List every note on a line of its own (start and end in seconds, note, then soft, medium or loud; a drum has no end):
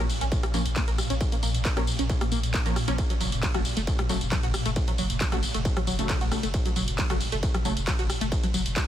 0.00 8.87 A#2 medium
0.10 open hi-hat loud
0.10 tambourine medium
0.21 0.32 A#1 medium
0.21 0.25 C#4 loud
0.21 closed hi-hat medium
0.21 tambourine soft
0.32 kick loud
0.32 closed hi-hat medium
0.32 ride medium
0.32 tambourine soft
0.43 0.46 A#3 medium
0.43 cross-stick loud
0.43 closed hi-hat medium
0.43 tambourine soft
0.54 0.65 A#1 loud
0.54 0.61 F3 medium
0.54 0.61 A#3 medium
0.54 0.61 C#4 loud
0.54 open hi-hat loud
0.54 tambourine medium
0.66 0.76 A#1 medium
0.66 closed hi-hat medium
0.66 tambourine soft
0.76 0.79 A#3 medium
0.76 kick loud
0.76 clap loud
0.76 closed hi-hat medium
0.76 ride medium
0.76 tambourine soft
0.88 0.98 A#1 medium
0.88 0.90 A#4 loud
0.88 closed hi-hat medium
0.88 tambourine soft
0.98 cross-stick medium
0.98 open hi-hat loud
0.98 tambourine medium
1.10 1.21 A#1 medium
1.10 1.14 C#4 loud
1.10 closed hi-hat medium
1.10 tambourine soft
1.21 kick loud
1.21 closed hi-hat medium
1.21 ride medium
1.21 tambourine soft
1.32 1.35 A#3 medium
1.32 closed hi-hat medium
1.32 tambourine soft
1.43 1.54 A#1 loud
1.43 1.50 A#3 medium
1.43 open hi-hat loud
1.43 tambourine medium
1.54 1.65 A#1 medium
1.54 closed hi-hat medium
1.54 tambourine soft
1.65 1.68 A#3 medium
1.65 kick loud
1.65 clap loud
1.65 closed hi-hat medium
1.65 ride medium
1.65 tambourine soft
1.77 1.87 A#1 medium
1.77 1.83 F3 loud
1.77 1.83 A#3 medium
1.77 1.83 C#4 loud
1.77 1.79 A#4 loud
1.77 cross-stick loud
1.77 closed hi-hat medium
1.77 tambourine soft
1.87 open hi-hat loud
1.87 tambourine medium
1.99 2.09 A#1 medium
1.99 2.03 C#4 loud
1.99 closed hi-hat medium
1.99 tambourine soft
2.10 kick loud
2.10 closed hi-hat medium
2.10 ride medium
2.10 tambourine soft
2.21 2.24 A#3 medium
2.21 cross-stick loud
2.21 closed hi-hat medium
2.21 tambourine soft
2.32 2.43 A#1 loud
2.32 2.39 A#3 medium
2.32 open hi-hat loud
2.32 tambourine medium
2.43 2.54 A#1 medium
2.43 closed hi-hat medium
2.43 tambourine soft
2.54 2.57 A#3 medium
2.54 kick loud
2.54 clap loud
2.54 closed hi-hat medium
2.54 ride medium
2.54 tambourine soft
2.66 2.76 A#1 medium
2.66 2.76 F3 medium
2.66 2.76 A#3 medium
2.66 2.76 C#4 loud
2.66 2.68 A#4 loud
2.66 closed hi-hat medium
2.66 tambourine soft
2.76 cross-stick medium
2.76 open hi-hat loud
2.76 tambourine medium
2.88 2.98 A#1 medium
2.88 2.97 F3 medium
2.88 2.97 A#3 medium
2.88 2.97 C#4 loud
2.88 2.92 C#4 loud
2.88 closed hi-hat medium
2.88 tambourine soft
2.98 kick loud
2.98 closed hi-hat medium
2.98 ride medium
2.98 tambourine soft
3.10 3.13 F#3 medium
3.10 closed hi-hat medium
3.10 tambourine soft
3.21 3.32 F#1 loud
3.21 3.28 F#3 medium
3.21 open hi-hat loud
3.21 tambourine medium
3.32 3.43 F#1 medium
3.32 closed hi-hat medium
3.32 tambourine soft
3.43 3.46 F#3 medium
3.43 kick loud
3.43 clap loud
3.43 closed hi-hat medium
3.43 ride medium
3.43 tambourine soft
3.54 3.65 F#1 medium
3.54 3.61 C#3 loud
3.54 3.61 F#3 medium
3.54 3.61 A3 loud
3.54 3.57 F#4 loud
3.54 cross-stick loud
3.54 closed hi-hat medium
3.54 tambourine soft
3.65 open hi-hat medium
3.65 tambourine medium
3.77 3.87 F#1 medium
3.77 3.81 A3 loud
3.77 closed hi-hat medium
3.77 tambourine soft
3.87 kick loud
3.87 closed hi-hat medium
3.87 ride medium
3.87 tambourine soft
3.99 4.02 F#3 medium
3.99 cross-stick loud
3.99 closed hi-hat medium
3.99 tambourine soft
4.09 4.21 F#1 loud
4.09 4.17 C#3 medium
4.09 4.17 F#3 medium
4.09 4.17 A3 loud
4.09 open hi-hat loud
4.09 tambourine medium
4.21 4.32 F#1 medium
4.21 closed hi-hat medium
4.21 tambourine soft
4.32 4.35 F#3 medium
4.32 kick loud
4.32 clap loud
4.32 closed hi-hat medium
4.32 ride medium
4.32 tambourine soft
4.43 4.54 F#1 medium
4.43 4.46 F#4 loud
4.43 closed hi-hat medium
4.43 tambourine soft
4.54 cross-stick medium
4.54 open hi-hat medium
4.54 tambourine medium
4.66 4.76 F#1 medium
4.66 4.70 A3 loud
4.66 closed hi-hat medium
4.66 tambourine soft
4.76 kick loud
4.76 closed hi-hat medium
4.76 ride medium
4.76 tambourine soft
4.88 4.90 F#3 medium
4.88 closed hi-hat medium
4.88 tambourine soft
4.98 5.10 F#1 loud
4.98 5.05 F#3 medium
4.98 open hi-hat loud
4.98 tambourine medium
5.10 5.21 F#1 medium
5.10 closed hi-hat medium
5.10 tambourine soft
5.21 5.24 F#3 medium
5.21 kick loud
5.21 clap loud
5.21 closed hi-hat medium
5.21 ride medium
5.21 tambourine soft
5.32 5.43 F#1 medium
5.32 5.39 C#3 loud
5.32 5.39 F#3 medium
5.32 5.39 A3 loud
5.32 5.35 F#4 loud
5.32 cross-stick loud
5.32 closed hi-hat medium
5.32 tambourine soft
5.43 open hi-hat medium
5.43 tambourine medium
5.54 5.65 F#1 medium
5.54 5.59 A3 loud
5.54 closed hi-hat medium
5.54 tambourine soft
5.65 kick loud
5.65 closed hi-hat medium
5.65 ride medium
5.65 tambourine soft
5.77 5.79 F#3 medium
5.77 cross-stick loud
5.77 closed hi-hat medium
5.77 tambourine soft
5.87 5.98 F#1 loud
5.87 5.94 F#3 medium
5.87 open hi-hat loud
5.87 tambourine medium
5.99 6.09 F#1 medium
5.99 6.29 C#3 medium
5.99 6.29 F#3 medium
5.99 6.29 A3 medium
5.99 closed hi-hat medium
5.99 tambourine soft
6.09 6.12 F#3 medium
6.09 kick loud
6.09 clap loud
6.09 closed hi-hat medium
6.09 ride medium
6.09 tambourine soft
6.21 6.32 F#1 medium
6.21 6.24 F#4 loud
6.21 closed hi-hat medium
6.21 tambourine soft
6.32 6.39 C#3 medium
6.32 6.39 F#3 medium
6.32 6.39 A3 medium
6.32 cross-stick medium
6.32 open hi-hat medium
6.32 tambourine medium
6.43 6.54 F#1 medium
6.43 6.48 A3 loud
6.43 closed hi-hat medium
6.43 tambourine soft
6.54 kick loud
6.54 closed hi-hat medium
6.54 ride medium
6.54 tambourine soft
6.66 6.68 F#3 medium
6.66 closed hi-hat medium
6.66 tambourine soft
6.76 6.87 F#1 loud
6.76 6.83 F#3 medium
6.76 open hi-hat loud
6.76 tambourine medium
6.88 6.98 F#1 medium
6.88 closed hi-hat medium
6.88 tambourine soft
6.98 7.01 F#3 medium
6.98 kick loud
6.98 clap loud
6.98 closed hi-hat medium
6.98 ride medium
6.98 tambourine soft
7.10 7.21 F#1 medium
7.10 7.17 C#3 loud
7.10 7.17 F#3 medium
7.10 7.17 A3 loud
7.10 7.13 F#4 loud
7.10 cross-stick medium
7.10 closed hi-hat medium
7.10 tambourine soft
7.21 open hi-hat medium
7.21 tambourine medium
7.32 7.43 F#1 medium
7.32 7.37 A3 loud
7.32 closed hi-hat medium
7.32 tambourine soft
7.43 kick loud
7.43 closed hi-hat medium
7.43 ride medium
7.43 tambourine soft
7.55 7.57 F#3 medium
7.55 cross-stick medium
7.55 closed hi-hat medium
7.55 tambourine soft
7.65 7.76 F#1 loud
7.65 7.73 C#3 medium
7.65 7.73 F#3 medium
7.65 7.72 F#3 medium
7.65 7.73 A3 loud
7.65 open hi-hat loud
7.65 tambourine medium
7.77 7.87 F#1 medium
7.77 closed hi-hat medium
7.77 tambourine soft
7.87 7.90 F#3 medium
7.87 kick loud
7.87 clap loud
7.87 closed hi-hat medium
7.87 ride medium
7.87 tambourine soft
7.99 8.09 F#1 medium
7.99 8.02 F#4 loud
7.99 closed hi-hat medium
7.99 tambourine soft
8.10 cross-stick medium
8.10 open hi-hat medium
8.10 tambourine medium
8.21 8.32 F#1 medium
8.21 8.25 A3 loud
8.21 closed hi-hat medium
8.21 tambourine soft
8.32 kick loud
8.32 closed hi-hat medium
8.32 ride medium
8.32 tambourine soft
8.44 8.46 F#3 medium
8.44 closed hi-hat medium
8.44 tambourine soft
8.54 8.65 F#1 loud
8.54 8.61 F#3 medium
8.54 open hi-hat loud
8.54 tambourine medium
8.66 8.76 F#1 medium
8.66 closed hi-hat medium
8.66 tambourine soft
8.76 8.79 F#3 medium
8.76 kick loud
8.76 clap loud
8.76 closed hi-hat medium
8.76 ride medium
8.76 tambourine soft